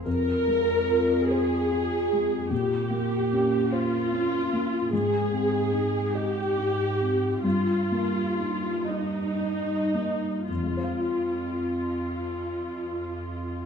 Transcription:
X:1
M:6/8
L:1/16
Q:3/8=48
K:Fm
V:1 name="Viola section"
B6 A6 | G6 F6 | A6 G6 | F6 E6 |
F12 |]
V:2 name="Harp"
[A,Fc]12- | [A,Fc]12 | z12 | z12 |
z12 |]
V:3 name="Felt piano"
F,,2 A,2 F2 c2 F2 A,2 | B,,2 B,2 D2 c2 D2 B,2 | A,,2 C2 E2 e2 E2 C2 | G,,2 B,2 E2 e2 E2 B,2 |
[F,,F,A,Fcf]12 |]
V:4 name="Cello section" clef=bass
F,,12 | B,,12 | A,,12 | G,,8- G,,3 z |
F,,12 |]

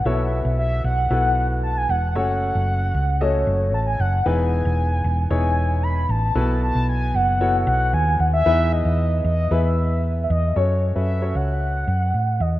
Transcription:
X:1
M:4/4
L:1/16
Q:1/4=114
K:E
V:1 name="Soft synth lead"
e4 e2 f6 a g f2 | f8 c4 a g f2 | g8 g4 b2 a2- | a2 a2 g2 f4 f2 g2 f e- |
e2 d4 d2 e4- e3/2 e/2 d2 | c3 e3 f8 d2 |]
V:2 name="Grand piano"
[B,EFAc]8 [B,EFAB]8 | [A,CFAc]8 [A,CFAd]8 | [B,DEGB]8 [B,DEGc]8 | [B,EFAB]8 [B,EFAc]8 |
[B,DEGB]8 [B,EGB]8 | [CFAc]3 [CFAB]2 [CFAc]8 z3 |]
V:3 name="Grand piano" clef=bass
B,,6 z8 z2 | z16 | E,6 z8 z2 | B,,6 z8 z2 |
E,6 z8 z2 | z16 |]
V:4 name="Fingered electric bass" clef=bass
B,,,3 B,,,3 B,,,2 B,,,6 E,,,2 | F,,,3 F,,,3 C,,4 F,,,2 A,,,2 F,,,2 | E,,,3 E,,,3 E,,,2 E,,,6 A,,,2 | B,,,3 B,,,3 F,,,4 B,,,2 D,,2 D,,2 |
E,,3 E,,3 E,,2 E,,6 E,,2 | F,,3 F,,3 C,,4 F,,2 A,,2 E,,2 |]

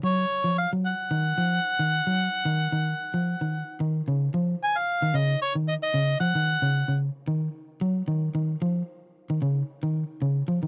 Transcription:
X:1
M:4/4
L:1/16
Q:"Swing 16ths" 1/4=112
K:C#mix
V:1 name="Harmonica"
c4 e2 f8- f2- | f12 z4 | z2 g e3 d2 c2 d d3 f2- | f4 z12 |
z16 |]
V:2 name="Clean electric guitar" clef=bass
F,2 z E,2 F,2 z D,2 E,2 z D,2 F,- | F, z D,2 D,2 z E,2 D,2 z D,2 C,2 | E,2 z3 D, C,2 z D,2 z C,2 E, D,- | D, C,2 C,2 z D,2 z2 F,2 D,2 D,2 |
E,2 z3 D, C,2 z D,2 z C,2 E, D, |]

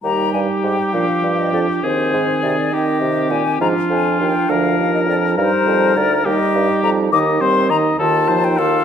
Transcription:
X:1
M:6/8
L:1/16
Q:3/8=68
K:Eb
V:1 name="Flute"
b2 a2 g2 f3 e d2 | c4 d2 e4 a2 | b2 a2 g2 f3 e d2 | c4 d2 e4 b2 |
[K:Cdor] d'2 c'2 b2 a3 g f2 |]
V:2 name="Oboe"
G12 | A6 G6 | F6 B6 | B6 G6 |
[K:Cdor] e2 c2 e2 A2 c2 A2 |]
V:3 name="Clarinet"
E6 D6 | C6 C6 | D12 | E6 E6 |
[K:Cdor] E2 C2 E2 F2 E2 F2 |]
V:4 name="French horn" clef=bass
G,6 F,6 | E,12 | F,6 F,6 | G,6 G,6 |
[K:Cdor] E,2 G,2 E,2 E,2 F,2 E,2 |]
V:5 name="Bassoon" clef=bass
E,,2 G,,2 A,,2 B,,2 G,,2 F,,2 | E,,2 A,,2 C,2 E,2 C,2 B,,2 | A,,2 F,,2 E,,2 D,,2 E,,2 F,,2 | G,,2 F,,2 D,,2 E,,2 G,,2 F,,2 |
[K:Cdor] E,,6 E,,6 |]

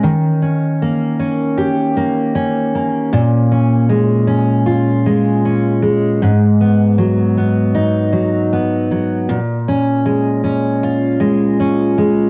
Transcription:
X:1
M:4/4
L:1/8
Q:"Swing 16ths" 1/4=78
K:A#phr
V:1 name="Steel-string acoustic guitar"
D, C A, C =G A, C A, | A,, C G, C E G, C G, | G,, B, F, B, D F, B, F, | A,, C G, C E G, C G, |]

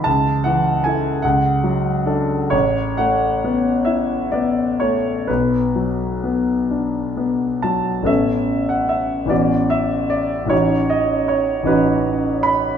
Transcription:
X:1
M:6/8
L:1/16
Q:3/8=49
K:A
V:1 name="Grand piano"
a2 f2 g2 f6 | c2 f4 e2 d2 c2 | B8- B2 a2 | e3 f e2 d2 e2 d2 |
c2 ^d2 c2 B4 b2 |]
V:2 name="Grand piano"
C,,2 E,2 [EA]2 C,,2 F,2 [DA]2 | A,,,2 A,2 B,2 E2 B,2 A,2 | B,,,2 F,2 B,2 D2 B,2 F,2 | [A,,,A,B,CA]6 [A,,,E,B,CF]6 |
[A,,,E,C^DF]6 [A,,,E,CDF]6 |]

